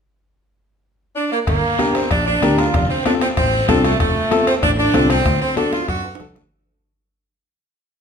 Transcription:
1.16 1.31 D4 medium
1.32 1.39 A#3 medium
1.47 1.60 G1 medium
1.47 1.92 A#3 medium
1.47 bombo low medium
1.47 bombo rim medium
1.47 high conga soft
1.47 high timbale medium
1.47 long guiro medium
1.79 2.01 D4 medium
1.79 2.01 G4 medium
1.79 2.02 A#4 medium
1.79 bombo rim medium
1.79 high conga medium
1.79 high timbale medium
1.79 short guiro medium
1.95 2.11 C4 medium
1.95 bombo rim medium
1.95 high timbale medium
1.95 short guiro medium
2.11 2.36 A#1 medium
2.11 2.25 D4 medium
2.11 bombo low medium
2.11 bombo rim medium
2.11 high timbale medium
2.11 long guiro medium
2.26 2.56 D4 medium
2.42 2.68 D2 medium
2.42 2.64 D4 medium
2.42 2.65 G4 medium
2.42 2.65 A#4 medium
2.42 bombo rim medium
2.42 high conga medium
2.42 high timbale medium
2.42 short guiro medium
2.58 2.90 F4 medium
2.58 bombo rim medium
2.58 high timbale medium
2.58 short guiro medium
2.74 2.87 F1 loud
2.74 bombo low medium
2.74 bombo rim medium
2.74 high conga soft
2.74 high timbale medium
2.74 long guiro medium
2.90 3.04 C4 medium
3.05 3.28 C4 medium
3.05 3.13 D4 medium
3.05 3.28 F4 medium
3.05 3.28 A4 medium
3.05 bombo rim medium
3.05 high conga medium
3.05 high timbale medium
3.05 short guiro medium
3.21 3.29 C4 medium
3.21 bombo rim medium
3.21 high timbale medium
3.21 short guiro medium
3.37 3.62 A1 loud
3.37 3.66 C4 medium
3.37 bombo low medium
3.37 bombo rim medium
3.37 high conga soft
3.37 high timbale medium
3.37 long guiro medium
3.68 3.94 C2 medium
3.68 3.91 C4 medium
3.68 3.83 D4 medium
3.68 3.91 F4 medium
3.68 3.91 A4 medium
3.68 bombo low medium
3.68 bombo rim medium
3.68 high conga medium
3.68 high timbale medium
3.68 low timbale medium
3.68 short guiro medium
3.84 3.98 A3 medium
3.84 bombo rim medium
3.84 high timbale medium
3.84 short guiro medium
4.00 4.13 F1 loud
4.00 4.44 A3 medium
4.00 bombo low medium
4.00 bombo rim medium
4.00 high conga soft
4.00 high timbale medium
4.00 long guiro medium
4.31 4.53 C4 medium
4.31 4.54 F4 medium
4.31 4.54 A4 medium
4.31 bombo rim medium
4.31 high conga medium
4.31 high timbale medium
4.31 short guiro medium
4.47 4.54 C4 medium
4.47 bombo rim medium
4.47 high timbale medium
4.47 short guiro medium
4.63 4.88 A1 loud
4.63 4.70 D4 medium
4.63 bombo low medium
4.63 bombo rim medium
4.63 high conga soft
4.63 high timbale medium
4.63 long guiro medium
4.79 5.08 D4 loud
4.94 5.20 C2 medium
4.94 5.16 C4 medium
4.94 5.16 F4 medium
4.94 5.17 A4 medium
4.94 bombo rim medium
4.94 high conga medium
4.94 high timbale medium
4.94 low timbale medium
4.94 short guiro medium
5.10 5.40 C4 medium
5.10 bombo rim medium
5.10 high timbale medium
5.10 short guiro medium
5.25 5.38 D2 medium
5.25 bombo low medium
5.25 bombo rim medium
5.25 high timbale medium
5.25 long guiro medium
5.42 5.56 C4 medium
5.56 5.79 D4 medium
5.56 5.72 D4 medium
5.56 5.79 F#4 medium
5.56 5.79 A4 medium
5.56 bombo rim medium
5.56 high conga medium
5.56 high timbale medium
5.56 short guiro medium
5.73 5.88 F4 loud
5.73 bombo rim medium
5.73 high conga medium
5.73 high timbale medium
5.73 short guiro medium
5.88 6.14 F#2 medium
5.88 6.33 F#4 medium
5.88 bombo low medium
5.88 bombo rim medium
5.88 high timbale medium
5.88 long guiro medium
6.04 high timbale medium
6.15 high timbale medium
6.20 6.34 C2 medium
6.20 6.42 D4 medium
6.20 6.42 F#4 medium
6.20 6.43 A4 medium
6.20 bombo rim medium
6.20 low conga medium
6.20 short guiro medium
6.36 bombo rim medium
6.36 low conga medium
6.36 low timbale medium
6.36 short guiro medium

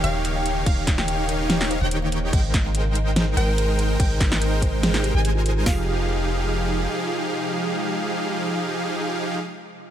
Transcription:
0.00 0.64 D#1 loud
0.00 2.29 C#3 medium
0.00 0.64 D#3 medium
0.00 2.29 A#3 medium
0.00 2.29 D#4 medium
0.00 5.62 A#4 medium
0.00 0.24 C#5 loud
0.00 0.64 C#5 medium
0.00 0.64 F5 loud
0.00 closed hi-hat medium
0.04 0.64 D#4 medium
0.04 0.64 G4 medium
0.25 closed hi-hat medium
0.36 0.56 G5 loud
0.46 closed hi-hat medium
0.66 1.79 D#1 loud
0.66 1.79 D#3 medium
0.66 1.79 D#4 medium
0.66 1.79 G4 medium
0.66 1.79 C#5 medium
0.66 0.86 F5 loud
0.66 1.79 F5 loud
0.66 kick loud
0.66 closed hi-hat medium
0.66 crash medium
0.87 kick loud
0.87 snare medium
0.87 closed hi-hat medium
0.98 1.18 G5 loud
0.98 snare soft
0.98 snare medium
1.08 closed hi-hat medium
1.29 1.42 F5 medium
1.29 closed hi-hat medium
1.50 1.63 C#5 medium
1.50 snare loud
1.50 closed hi-hat medium
1.61 snare medium
1.71 1.91 C5 medium
1.71 closed hi-hat medium
1.81 2.31 D#1 loud
1.81 2.31 D#3 loud
1.81 2.31 D#4 loud
1.81 2.31 G4 medium
1.81 2.31 C#5 loud
1.81 2.31 G5 loud
1.91 closed hi-hat medium
2.02 2.22 F5 medium
2.12 closed hi-hat medium
2.33 3.35 G#1 loud
2.33 5.63 C3 medium
2.33 5.63 G#3 medium
2.33 3.35 G#3 loud
2.33 5.63 D#4 medium
2.33 3.35 D#4 medium
2.33 3.35 A#4 medium
2.33 3.35 C5 medium
2.33 2.53 D#5 loud
2.33 3.35 G5 loud
2.33 kick loud
2.33 closed hi-hat medium
2.33 crash medium
2.54 kick loud
2.54 snare medium
2.54 closed hi-hat medium
2.65 2.85 F5 loud
2.75 closed hi-hat medium
2.95 3.09 D#5 medium
2.95 closed hi-hat medium
3.16 3.30 C5 medium
3.16 snare loud
3.16 closed hi-hat medium
3.37 3.98 G#1 loud
3.37 3.97 G#3 medium
3.37 3.97 D#4 medium
3.37 3.57 A#4 loud
3.37 3.97 A#4 medium
3.37 3.97 C5 medium
3.37 3.97 G5 loud
3.37 closed hi-hat medium
3.58 closed hi-hat medium
3.69 3.89 D#5 medium
3.79 closed hi-hat medium
3.99 5.13 G#1 loud
3.99 5.12 G#3 medium
3.99 5.12 D#4 medium
3.99 5.12 A#4 medium
3.99 4.19 C5 loud
3.99 5.12 C5 medium
3.99 5.12 G5 loud
3.99 kick loud
3.99 closed hi-hat medium
3.99 crash medium
4.20 kick loud
4.20 snare medium
4.20 closed hi-hat medium
4.31 4.51 D#5 medium
4.31 snare soft
4.31 snare medium
4.42 closed hi-hat medium
4.62 4.76 C5 medium
4.62 kick medium
4.62 closed hi-hat medium
4.83 4.97 G#4 medium
4.83 snare loud
4.83 closed hi-hat medium
4.94 snare medium
5.04 5.24 G4 medium
5.04 closed hi-hat medium
5.15 5.64 G#1 loud
5.15 5.64 G#3 loud
5.15 5.64 D#4 medium
5.15 5.64 A#4 medium
5.15 5.64 C5 medium
5.15 5.64 G#5 loud
5.25 closed hi-hat medium
5.35 5.55 F4 medium
5.46 closed hi-hat medium
5.66 6.87 F1 loud
5.66 9.36 C3 medium
5.66 9.36 F3 medium
5.66 9.36 G#3 medium
5.66 9.36 D#4 medium
5.66 9.36 F4 medium
5.66 9.36 G4 medium
5.66 9.36 G#4 medium
5.66 9.36 F5 medium
5.66 kick loud
5.66 snare loud
5.66 open hi-hat medium

